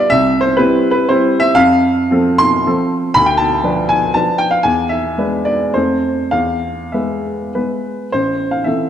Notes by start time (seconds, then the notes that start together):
0.10 C2 E5
0.41 C5
0.57 G3 C4 E4 B4
0.91 B4
1.09 G3 C4 E4 C5
1.40 E5
1.55 F2 F5
2.11 F3 C4 A4
2.38 C6
2.67 F3 C4 A4
3.14 D2 B5
3.26 G5
3.37 A5
3.63 F3 D4 B4
3.89 G#5
4.14 F3 D4 B4 A5
4.38 G5
4.51 F5
4.63 E2 G#5
4.89 E5
5.18 G#3 D4 B4
5.45 D5
5.74 F2 A3 C4 A4 C5
6.31 E2 F5
6.92 G#3 B3 B4 E5
7.55 G#3 B3 B4
8.12 A1 C5
8.51 F5
8.64 E3 C4 A4 E5